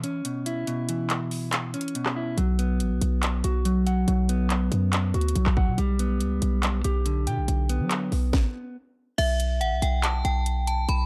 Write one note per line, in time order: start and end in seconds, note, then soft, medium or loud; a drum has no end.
0.00 0.24 E3 medium
0.00 1.10 C#4 medium
0.00 closed hi-hat medium
0.25 0.66 B2 medium
0.25 closed hi-hat medium
0.46 1.53 E4 medium
0.46 closed hi-hat medium
0.67 1.74 B2 loud
0.67 closed hi-hat medium
0.89 1.95 E3 medium
0.89 closed hi-hat medium
1.10 clap medium
1.10 closed hi-hat medium
1.31 open hi-hat medium
1.53 clap loud
1.53 closed hi-hat medium
1.74 2.38 C#4 medium
1.74 closed hi-hat medium
1.81 closed hi-hat medium
1.88 closed hi-hat medium
1.95 2.38 B2 medium
1.95 closed hi-hat medium
2.06 cross-stick medium
2.06 clap medium
2.16 2.38 E4 medium
2.38 2.82 B1 loud
2.38 3.44 F#3 loud
2.38 closed hi-hat medium
2.59 3.65 B3 medium
2.59 closed hi-hat medium
2.80 2.92 A1 loud
2.80 closed hi-hat medium
2.91 3.01 B1 loud
3.01 3.42 B1 loud
3.01 closed hi-hat medium
3.23 clap loud
3.23 closed hi-hat medium
3.44 4.05 B1 loud
3.44 4.50 F#4 medium
3.44 closed hi-hat medium
3.65 4.07 F#3 medium
3.65 closed hi-hat medium
3.87 4.93 F#5 medium
3.87 closed hi-hat medium
4.08 4.69 B1 loud
4.08 5.14 F#3 medium
4.08 closed hi-hat medium
4.29 5.36 B3 medium
4.29 closed hi-hat medium
4.50 clap medium
4.50 closed hi-hat medium
4.72 5.12 F#2 loud
4.72 closed hi-hat medium
4.93 clap loud
4.93 closed hi-hat medium
5.14 5.35 D2 loud
5.14 5.78 F#4 medium
5.14 closed hi-hat soft
5.21 closed hi-hat medium
5.28 closed hi-hat medium
5.35 5.69 B1 loud
5.35 5.78 F#3 medium
5.35 closed hi-hat medium
5.46 kick medium
5.46 cross-stick medium
5.46 clap medium
5.57 5.78 F#5 loud
5.57 kick loud
5.67 5.77 B2 loud
5.78 6.22 B1 loud
5.78 6.84 G3 loud
5.78 closed hi-hat medium
5.99 7.06 B3 medium
5.99 closed hi-hat medium
6.21 6.41 C#2 loud
6.21 closed hi-hat medium
6.42 6.83 B1 loud
6.42 closed hi-hat medium
6.63 clap loud
6.63 closed hi-hat medium
6.84 7.28 B1 loud
6.84 7.91 G4 medium
6.84 closed hi-hat medium
7.06 8.12 D3 medium
7.06 closed hi-hat medium
7.27 7.39 B2 loud
7.27 8.33 G5 medium
7.27 closed hi-hat medium
7.38 7.48 B1 loud
7.48 7.82 B1 loud
7.48 closed hi-hat medium
7.69 8.76 B3 medium
7.69 closed hi-hat medium
7.80 8.10 F#3 loud
7.91 clap medium
7.91 closed hi-hat medium
8.12 8.32 B1 loud
8.12 open hi-hat medium
8.33 kick loud
8.33 snare loud
9.18 9.62 B1 loud
9.18 9.58 E5 loud
9.18 closed hi-hat medium
9.18 crash loud
9.40 closed hi-hat medium
9.61 9.73 A1 loud
9.61 9.78 F#5 medium
9.61 closed hi-hat medium
9.72 9.82 B1 loud
9.82 10.23 B1 loud
9.82 10.00 G5 medium
9.82 closed hi-hat medium
10.03 10.21 A5 medium
10.03 clap loud
10.03 closed hi-hat medium
10.25 10.86 B1 loud
10.25 10.65 G5 medium
10.25 closed hi-hat medium
10.46 closed hi-hat medium
10.67 10.85 A5 medium
10.67 closed hi-hat medium
10.89 11.06 B1 loud
10.89 11.06 B5 loud
10.89 closed hi-hat medium